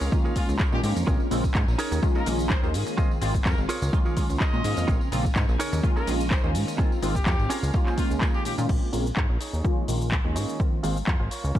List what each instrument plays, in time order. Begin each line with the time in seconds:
Already playing: string machine C#4 A#4 F5, clean electric guitar F4 G#4 A#4 C#5
0.01 analog synth bass C#2, tambourine, shaker
0.12 analog polysynth D#3 G#3 A#3 C#4 F4, kick, tambourine, shaker
0.24 clean electric guitar F4 G#4 A#4 C#5, tambourine
0.36 analog polysynth D#3 G#3 A#3 C#4 F4, trumpet section F4, kick, open hi-hat, shaker
0.49 analog synth bass C#2, tambourine, shaker
0.59 clean electric guitar F4 G#4 A#4 C#5, kick, clap, tambourine, shaker
0.72 analog synth bass A#2, analog polysynth D#3 G#3 A#3 C#4 F4, trumpet section G4, tambourine
0.84 analog synth bass G#2, trumpet section G4, open hi-hat, shaker
0.96 analog synth bass F2, muted clean electric guitar stroke, tambourine, shaker
1.07 analog synth bass A#1, analog polysynth C#3 G#3 A#3 C4 F4, clean electric guitar F4 G#4 A#4 C#5, string machine G#5, kick, shaker
1.20 tambourine
1.31 analog synth bass A#1, analog polysynth C#3 G#3 A#3 C4 F4, muted clean electric guitar stroke, open hi-hat, shaker
1.44 kick, tambourine, shaker
1.55 analog synth bass G#2, kick, clap, tambourine, shaker
1.68 analog synth bass A#1, tambourine
1.78 string machine C#4 G#4 D#5, clean electric guitar D#4 G#4 A#4 C#5, open hi-hat, shaker
1.92 analog synth bass D#2, tambourine, shaker
2.02 analog polysynth D#3 G#3 A#3 C#4 F4, kick, tambourine, shaker
2.15 clean electric guitar D#4 G#4 A#4 D#5, trumpet section A#4, tambourine
2.26 analog synth bass A#1, analog polysynth D#3 G#3 A#3 C#4 F4, open hi-hat, shaker
2.39 tambourine, shaker
2.50 clean electric guitar D#4 G#4 A#4 C#5, trumpet section C5, kick, clap, tambourine, shaker
2.63 analog synth bass D#2, analog polysynth D#3 G#3 A#3 C#4 F4, trumpet section C5, tambourine
2.74 analog synth bass G#2, open hi-hat, shaker
2.87 muted clean electric guitar stroke, tambourine, shaker
2.97 analog polysynth D#3 G#3 A#3 C4 F4, string machine C4 F5, clean electric guitar F4 G#4 C5 D#5, kick, tambourine, shaker
3.11 tambourine
3.21 analog synth bass G#1, analog polysynth D#3 G#3 A#3 C4 F4, muted clean electric guitar stroke, open hi-hat, shaker
3.34 kick, tambourine, shaker
3.45 analog synth bass F2, trumpet section A#4, kick, clap, tambourine, shaker
3.58 analog synth bass G#1, tambourine
3.69 string machine C#4 A#4, clean electric guitar F4 G#4 A#4 C#5, open hi-hat, shaker
3.82 analog synth bass C#2, tambourine, shaker
3.93 analog polysynth D#3 G#3 A#3 C#4 F4, kick, tambourine, shaker
4.05 clean electric guitar F4 G#4 A#4 C#5, tambourine
4.17 analog polysynth D#3 G#3 A#3 C#4 F4, kick, open hi-hat, shaker
4.30 analog synth bass C#2, tambourine, shaker
4.40 clean electric guitar F4 G#4 A#4 C#5, trumpet section D#5, kick, clap, tambourine, shaker
4.53 analog synth bass A#2, analog polysynth D#3 G#3 A#3 C#4 F4, tambourine
4.64 analog synth bass G#2, open hi-hat, shaker
4.77 analog synth bass F2, muted clean electric guitar stroke, tambourine, shaker
4.88 analog synth bass A#1, analog polysynth C#3 G#3 A#3 C4 F4, clean electric guitar F4 G#4 A#4 C#5, string machine G#5, kick, tambourine, shaker
5.01 tambourine
5.12 analog synth bass A#1, analog polysynth C#3 G#3 A#3 C4 F4, muted clean electric guitar stroke, open hi-hat, shaker
5.25 kick, tambourine, shaker
5.36 analog synth bass G#2, kick, clap, tambourine, shaker
5.49 analog synth bass A#1, tambourine
5.59 string machine C#4 A#4 D#5, clean electric guitar D#4 G#4 A#4 C#5, open hi-hat, shaker
5.73 analog synth bass D#2, tambourine, shaker
5.83 analog polysynth D#3 G#3 A#3 C#4 F4, kick, shaker
5.96 clean electric guitar D#4 G#4 A#4 C#5, trumpet section A#4, tambourine
6.07 analog synth bass A#1, analog polysynth D#3 G#3 A#3 C#4 F4, open hi-hat, shaker
6.20 tambourine, shaker
6.30 clean electric guitar D#4 G#4 A#4 C#5, trumpet section C5, kick, clap, tambourine, shaker
6.43 analog synth bass D#2, analog polysynth D#3 G#3 A#3 C#4 F4, trumpet section C5, tambourine
6.55 analog synth bass G#2, open hi-hat, shaker
6.67 muted clean electric guitar stroke, tambourine, shaker
6.78 analog polysynth D#3 G#3 A#3 C4 F4, string machine C4 F5, clean electric guitar D#4 F4 G#4 C5, kick, shaker
6.92 tambourine
7.02 analog synth bass G#1, analog polysynth D#3 G#3 A#3 C4 F4, muted clean electric guitar stroke, open hi-hat, shaker
7.15 trumpet section G4, kick, tambourine, shaker
7.26 analog synth bass F2, kick, clap, tambourine, shaker
7.39 analog synth bass G#1, tambourine
7.50 clean electric guitar C#4 F4 G#4 A#4, string machine C#4 A#4, open hi-hat, shaker
7.63 analog synth bass C#2, tambourine, shaker
7.74 analog polysynth D#3 G#3 A#3 C#4 F4, kick, tambourine, shaker
7.86 clean electric guitar C#4 F4 G#4 C5, clap, tambourine
7.97 analog polysynth D#3 G#3 A#3 C#4 F4, trumpet section F4, kick, open hi-hat, shaker
8.10 analog synth bass C#2, tambourine, shaker
8.21 clean electric guitar C#4 F4 G#4 A#4, kick, clap, tambourine, shaker
8.34 trumpet section G4, tambourine
8.45 analog synth bass A#2, trumpet section G4, open hi-hat, shaker
8.58 analog synth bass A#2, analog polysynth D#3 G#3 A#3 C#4 F4, muted clean electric guitar stroke, tambourine, shaker
8.69 analog synth bass A#1, kick, crash, shaker
8.93 analog synth bass A#1, analog polysynth C#3 G#3 A#3 C4 F4, clean electric guitar C#4 G#4 A#4, open hi-hat, shaker
9.06 shaker
9.16 analog synth bass G#2, muted clean electric guitar stroke, kick, clap, shaker
9.29 analog synth bass A#1, clean electric guitar C#4 G#4 A#4
9.40 clean electric guitar D#4 G#4 C#5, open hi-hat, shaker
9.53 analog synth bass D#2, shaker
9.64 analog polysynth D#3 G#3 A#3 C#4 F4, kick, shaker
9.88 analog synth bass A#1, analog polysynth D#3 G#3 A#3 C#4 F4, open hi-hat, shaker
10.01 muted clean electric guitar stroke, shaker
10.12 kick, clap, shaker
10.25 analog synth bass D#2, analog polysynth D#3 G#3 A#3 C#4 F4, muted clean electric guitar stroke
10.36 analog synth bass G#2, clean electric guitar D#4 G#4 C#5, open hi-hat, shaker
10.49 shaker
10.59 analog polysynth D#3 G#3 A#3 C4 F4, kick, shaker
10.83 analog synth bass G#1, analog polysynth D#3 G#3 A#3 C4 F4, clean electric guitar F4 G#4 C5, open hi-hat, shaker
10.97 shaker
11.07 analog synth bass F2, kick, clap, shaker
11.20 analog synth bass G#1, clean electric guitar F4 G#4 C5
11.31 clean electric guitar F4 A#4 C#5, open hi-hat, shaker
11.44 analog synth bass C#2, shaker
11.55 analog polysynth D#3 G#3 A#3 C#4 F4, kick, shaker